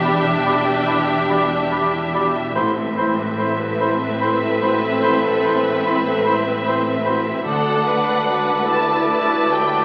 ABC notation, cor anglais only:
X:1
M:6/8
L:1/8
Q:3/8=49
K:Ador
V:1 name="Cor anglais"
d d d d d d | c c c c c c | c c c c c c | d6 |]